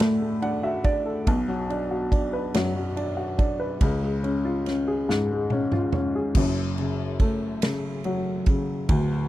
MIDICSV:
0, 0, Header, 1, 3, 480
1, 0, Start_track
1, 0, Key_signature, 3, "minor"
1, 0, Tempo, 846860
1, 719, Time_signature, 6, 3, 24, 8
1, 5261, End_track
2, 0, Start_track
2, 0, Title_t, "Grand piano"
2, 0, Program_c, 0, 0
2, 0, Control_c, 0, 64, 127
2, 0, Note_on_c, 0, 38, 67
2, 0, Note_on_c, 0, 45, 66
2, 0, Note_on_c, 0, 50, 68
2, 0, Note_on_c, 0, 57, 68
2, 0, Note_on_c, 0, 62, 57
2, 0, Note_on_c, 0, 66, 55
2, 0, Note_on_c, 0, 69, 59
2, 110, Note_off_c, 0, 57, 0
2, 118, Note_on_c, 0, 57, 54
2, 231, Note_off_c, 0, 62, 0
2, 239, Note_on_c, 0, 62, 58
2, 240, Note_on_c, 0, 78, 70
2, 350, Note_off_c, 0, 66, 0
2, 351, Note_off_c, 0, 78, 0
2, 358, Note_on_c, 0, 66, 55
2, 360, Note_on_c, 0, 76, 67
2, 470, Note_off_c, 0, 62, 0
2, 471, Note_off_c, 0, 76, 0
2, 478, Note_on_c, 0, 74, 71
2, 479, Note_on_c, 0, 62, 60
2, 590, Note_off_c, 0, 69, 0
2, 599, Note_on_c, 0, 69, 54
2, 694, Note_off_c, 0, 45, 0
2, 695, Note_off_c, 0, 50, 0
2, 696, Note_off_c, 0, 38, 0
2, 701, Note_off_c, 0, 57, 0
2, 701, Note_off_c, 0, 74, 0
2, 708, Note_off_c, 0, 66, 0
2, 712, Note_off_c, 0, 62, 0
2, 715, Note_off_c, 0, 69, 0
2, 722, Note_on_c, 0, 35, 70
2, 722, Note_on_c, 0, 47, 72
2, 727, Control_c, 0, 64, 0
2, 823, Control_c, 0, 64, 127
2, 841, Note_on_c, 0, 54, 54
2, 963, Note_on_c, 0, 62, 60
2, 1082, Note_on_c, 0, 66, 52
2, 1190, Note_off_c, 0, 62, 0
2, 1198, Note_on_c, 0, 62, 60
2, 1322, Note_on_c, 0, 71, 58
2, 1435, Note_off_c, 0, 54, 0
2, 1443, Note_on_c, 0, 42, 61
2, 1444, Note_on_c, 0, 54, 72
2, 1551, Note_off_c, 0, 54, 0
2, 1559, Note_on_c, 0, 54, 54
2, 1672, Note_off_c, 0, 62, 0
2, 1681, Note_on_c, 0, 62, 62
2, 1787, Note_off_c, 0, 66, 0
2, 1796, Note_on_c, 0, 66, 52
2, 1908, Note_off_c, 0, 62, 0
2, 1916, Note_on_c, 0, 62, 59
2, 2030, Note_off_c, 0, 71, 0
2, 2038, Note_on_c, 0, 71, 57
2, 2138, Note_off_c, 0, 35, 0
2, 2138, Note_off_c, 0, 42, 0
2, 2138, Note_off_c, 0, 47, 0
2, 2141, Note_off_c, 0, 54, 0
2, 2147, Note_off_c, 0, 66, 0
2, 2150, Note_off_c, 0, 62, 0
2, 2155, Note_off_c, 0, 71, 0
2, 2162, Note_on_c, 0, 37, 69
2, 2163, Note_on_c, 0, 49, 70
2, 2166, Control_c, 0, 64, 0
2, 2263, Control_c, 0, 64, 127
2, 2279, Note_on_c, 0, 56, 54
2, 2399, Note_on_c, 0, 61, 55
2, 2521, Note_on_c, 0, 65, 54
2, 2636, Note_off_c, 0, 61, 0
2, 2645, Note_on_c, 0, 61, 53
2, 2764, Note_on_c, 0, 68, 57
2, 2876, Note_off_c, 0, 56, 0
2, 2885, Note_on_c, 0, 44, 67
2, 2885, Note_on_c, 0, 56, 64
2, 3000, Note_off_c, 0, 56, 0
2, 3009, Note_on_c, 0, 56, 54
2, 3121, Note_off_c, 0, 61, 0
2, 3130, Note_on_c, 0, 61, 60
2, 3238, Note_off_c, 0, 65, 0
2, 3247, Note_on_c, 0, 65, 55
2, 3358, Note_off_c, 0, 61, 0
2, 3367, Note_on_c, 0, 61, 57
2, 3480, Note_off_c, 0, 68, 0
2, 3489, Note_on_c, 0, 68, 53
2, 3578, Note_off_c, 0, 37, 0
2, 3579, Note_off_c, 0, 49, 0
2, 3580, Note_off_c, 0, 44, 0
2, 3586, Note_off_c, 0, 56, 0
2, 3592, Note_off_c, 0, 65, 0
2, 3596, Note_off_c, 0, 61, 0
2, 3601, Note_off_c, 0, 68, 0
2, 3607, Control_c, 0, 64, 0
2, 3608, Note_on_c, 0, 30, 69
2, 3609, Note_on_c, 0, 42, 71
2, 3701, Control_c, 0, 64, 127
2, 3849, Note_on_c, 0, 49, 53
2, 4085, Note_on_c, 0, 57, 58
2, 4318, Note_off_c, 0, 49, 0
2, 4326, Note_on_c, 0, 49, 58
2, 4564, Note_on_c, 0, 54, 59
2, 4797, Note_off_c, 0, 49, 0
2, 4805, Note_on_c, 0, 49, 56
2, 5020, Note_off_c, 0, 57, 0
2, 5022, Note_off_c, 0, 30, 0
2, 5022, Note_off_c, 0, 42, 0
2, 5028, Note_off_c, 0, 54, 0
2, 5036, Note_off_c, 0, 49, 0
2, 5040, Note_on_c, 0, 26, 67
2, 5040, Note_on_c, 0, 38, 73
2, 5047, Control_c, 0, 64, 0
2, 5155, Control_c, 0, 64, 127
2, 5261, Note_off_c, 0, 26, 0
2, 5261, Note_off_c, 0, 38, 0
2, 5261, End_track
3, 0, Start_track
3, 0, Title_t, "Drums"
3, 0, Note_on_c, 9, 51, 89
3, 6, Note_on_c, 9, 38, 127
3, 56, Note_off_c, 9, 51, 0
3, 63, Note_off_c, 9, 38, 0
3, 240, Note_on_c, 9, 51, 38
3, 297, Note_off_c, 9, 51, 0
3, 477, Note_on_c, 9, 51, 36
3, 479, Note_on_c, 9, 36, 96
3, 534, Note_off_c, 9, 51, 0
3, 536, Note_off_c, 9, 36, 0
3, 720, Note_on_c, 9, 36, 105
3, 720, Note_on_c, 9, 51, 66
3, 776, Note_off_c, 9, 36, 0
3, 776, Note_off_c, 9, 51, 0
3, 965, Note_on_c, 9, 51, 36
3, 1022, Note_off_c, 9, 51, 0
3, 1201, Note_on_c, 9, 36, 95
3, 1203, Note_on_c, 9, 51, 41
3, 1257, Note_off_c, 9, 36, 0
3, 1260, Note_off_c, 9, 51, 0
3, 1442, Note_on_c, 9, 51, 85
3, 1448, Note_on_c, 9, 38, 118
3, 1499, Note_off_c, 9, 51, 0
3, 1505, Note_off_c, 9, 38, 0
3, 1684, Note_on_c, 9, 51, 39
3, 1740, Note_off_c, 9, 51, 0
3, 1920, Note_on_c, 9, 36, 98
3, 1920, Note_on_c, 9, 51, 40
3, 1976, Note_off_c, 9, 51, 0
3, 1977, Note_off_c, 9, 36, 0
3, 2158, Note_on_c, 9, 51, 74
3, 2159, Note_on_c, 9, 36, 117
3, 2214, Note_off_c, 9, 51, 0
3, 2216, Note_off_c, 9, 36, 0
3, 2404, Note_on_c, 9, 51, 36
3, 2460, Note_off_c, 9, 51, 0
3, 2642, Note_on_c, 9, 51, 40
3, 2649, Note_on_c, 9, 38, 33
3, 2699, Note_off_c, 9, 51, 0
3, 2706, Note_off_c, 9, 38, 0
3, 2890, Note_on_c, 9, 38, 60
3, 2947, Note_off_c, 9, 38, 0
3, 3118, Note_on_c, 9, 48, 73
3, 3175, Note_off_c, 9, 48, 0
3, 3240, Note_on_c, 9, 47, 76
3, 3297, Note_off_c, 9, 47, 0
3, 3358, Note_on_c, 9, 45, 100
3, 3415, Note_off_c, 9, 45, 0
3, 3597, Note_on_c, 9, 49, 101
3, 3599, Note_on_c, 9, 36, 119
3, 3654, Note_off_c, 9, 49, 0
3, 3656, Note_off_c, 9, 36, 0
3, 3842, Note_on_c, 9, 51, 39
3, 3898, Note_off_c, 9, 51, 0
3, 4079, Note_on_c, 9, 36, 94
3, 4079, Note_on_c, 9, 51, 42
3, 4135, Note_off_c, 9, 51, 0
3, 4136, Note_off_c, 9, 36, 0
3, 4319, Note_on_c, 9, 51, 90
3, 4325, Note_on_c, 9, 38, 119
3, 4376, Note_off_c, 9, 51, 0
3, 4382, Note_off_c, 9, 38, 0
3, 4557, Note_on_c, 9, 51, 40
3, 4614, Note_off_c, 9, 51, 0
3, 4796, Note_on_c, 9, 51, 39
3, 4799, Note_on_c, 9, 36, 101
3, 4853, Note_off_c, 9, 51, 0
3, 4856, Note_off_c, 9, 36, 0
3, 5038, Note_on_c, 9, 51, 73
3, 5039, Note_on_c, 9, 36, 115
3, 5095, Note_off_c, 9, 51, 0
3, 5096, Note_off_c, 9, 36, 0
3, 5261, End_track
0, 0, End_of_file